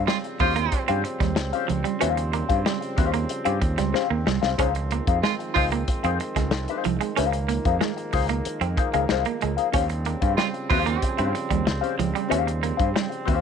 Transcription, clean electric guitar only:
0.07 0.18 G3 medium
0.40 muted clean electric guitar stroke medium
0.56 0.66 A#3 medium
0.88 0.99 C4 medium
1.04 muted clean electric guitar stroke soft
1.20 1.31 G3 medium
1.37 muted clean electric guitar stroke medium
1.68 1.79 F3 medium
1.84 1.95 G3 medium
2.01 2.11 C#4 medium
2.17 muted clean electric guitar stroke soft
2.33 2.44 A#3 medium
2.66 2.77 G3 medium
2.98 muted clean electric guitar stroke medium
3.14 3.24 A#3 medium
3.46 3.56 C4 medium
3.61 muted clean electric guitar stroke soft
3.78 3.89 G3 medium
3.94 muted clean electric guitar stroke medium
4.10 4.21 A#3 medium
4.27 4.37 G3 medium
4.59 4.70 C#4 loud
4.76 muted clean electric guitar stroke soft
4.92 5.02 A#3 medium
5.24 5.34 G#3 medium
5.56 muted clean electric guitar stroke soft
5.72 5.83 A#3 medium
6.05 6.15 C4 medium
6.21 muted clean electric guitar stroke soft
6.36 6.47 G#3 medium
6.53 muted clean electric guitar stroke soft
6.85 6.95 F3 medium
7.01 7.11 G#3 medium
7.16 7.27 C#4 loud
7.32 muted clean electric guitar stroke soft
7.48 7.59 A#3 medium
7.81 7.91 G#3 medium
8.13 muted clean electric guitar stroke soft
8.29 8.40 A#3 medium
8.61 8.72 C4 medium
8.78 muted clean electric guitar stroke soft
8.94 9.04 G#3 medium
9.10 muted clean electric guitar stroke soft
9.26 9.36 A#3 medium
9.42 9.53 G#3 medium
9.74 9.84 C#4 loud
9.90 muted clean electric guitar stroke soft
10.06 10.17 A#3 medium
10.39 10.49 G3 medium
10.71 muted clean electric guitar stroke soft
10.86 10.97 A#3 medium
11.19 11.29 C4 medium
11.35 muted clean electric guitar stroke medium
11.51 11.61 G3 medium
11.67 muted clean electric guitar stroke medium
11.99 12.09 F3 medium
12.15 12.26 G3 medium
12.31 12.42 C#4 medium
12.47 muted clean electric guitar stroke soft
12.63 12.73 A#3 medium
12.96 13.06 G3 medium
13.28 muted clean electric guitar stroke soft

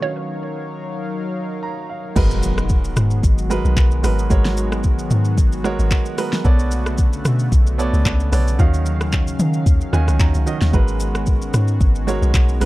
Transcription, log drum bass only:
2.16 2.93 G#1 loud
2.97 3.22 G#2 loud
3.23 3.63 G#1 loud
3.65 3.76 B1 medium
3.77 4.02 B1 loud
4.04 4.29 G#1 medium
4.30 5.07 G#1 loud
5.11 5.39 G#2 loud
5.38 5.77 G#1 loud
5.79 5.91 G#1 medium
6.45 7.21 B1 loud
7.25 7.50 B2 loud
7.52 7.91 B1 loud
7.93 8.05 C#2 medium
8.05 8.31 C#2 loud
8.32 8.58 B1 loud
8.59 9.35 D#2 loud
9.39 9.65 D#3 loud
9.66 9.80 D#2 medium
9.93 10.07 D#2 loud
10.08 10.19 C#2 medium
10.20 10.34 D#2 loud
10.35 10.46 C#2 medium
10.62 10.73 D#2 medium
10.73 11.50 G#1 loud
11.54 11.79 G#2 loud
11.81 12.20 G#1 medium
12.22 12.33 B1 medium
12.34 12.59 B1 loud
12.61 12.65 G#1 medium

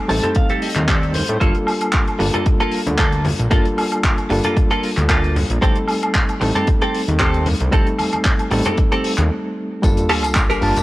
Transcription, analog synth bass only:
0.09 0.20 A1 medium
0.77 1.23 D#2 medium
1.29 1.38 A2 medium
1.41 1.52 G1 medium
2.20 2.31 G1 medium
2.87 3.34 D2 medium
3.40 3.49 A#1 medium
3.51 3.62 G1 loud
4.31 4.41 G1 medium
4.97 5.44 D2 medium
5.50 5.59 A#1 medium
5.62 5.73 A1 loud
6.41 6.52 A1 medium
7.08 7.55 D#2 medium
7.61 7.70 C2 medium
7.73 7.83 A1 loud
8.52 8.62 A1 medium
9.18 9.30 D#2 medium
9.83 9.94 G1 loud
10.62 10.73 G1 medium

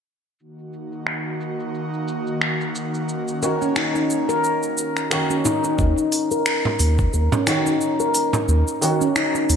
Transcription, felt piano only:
3.42 3.62 D#3 medium
3.42 3.63 C#4 medium
3.42 3.63 F#4 medium
5.10 5.76 D#3 medium
5.10 5.77 C#4 medium
5.10 5.77 F#4 medium
7.47 7.67 D#3 medium
7.47 7.67 C#4 medium
7.47 7.68 F#4 medium
8.81 9.02 D#3 medium
8.81 9.02 C#4 medium
8.81 9.03 F#4 medium

